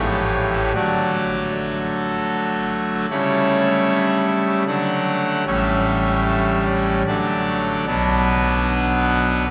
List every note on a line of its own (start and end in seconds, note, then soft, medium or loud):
0.00 0.72 A1 medium
0.00 0.73 A2 medium
0.00 0.73 E3 medium
0.00 0.72 A3 medium
0.00 0.73 G4 medium
0.00 0.72 C#5 loud
0.74 3.06 D3 medium
0.74 3.06 F#3 medium
0.74 3.06 A3 medium
0.74 3.06 F#4 medium
0.74 1.51 D5 loud
1.53 3.06 A4 medium
3.10 4.64 C#3 medium
3.10 4.64 G3 medium
3.10 4.64 A3 medium
3.10 4.64 E4 medium
3.10 4.25 C#5 loud
4.27 4.61 E5 medium
4.67 5.44 D3 medium
4.67 5.44 F#3 medium
4.67 5.44 A3 medium
4.67 5.44 D4 medium
4.67 5.44 F#5 loud
5.46 7.03 A1 medium
5.46 7.03 A2 medium
5.46 7.03 G3 medium
5.46 7.03 A3 medium
5.46 7.03 C#4 medium
5.46 6.63 E5 loud
6.66 7.01 D5 medium
7.07 7.86 D3 medium
7.07 7.85 F#3 soft
7.07 7.86 A3 medium
7.07 7.85 D4 medium
7.07 7.86 D5 loud
7.87 9.46 B1 medium
7.87 9.46 B2 medium
7.87 9.46 F#3 medium
7.87 9.46 B3 medium
7.87 9.46 D4 medium
7.87 9.46 B4 loud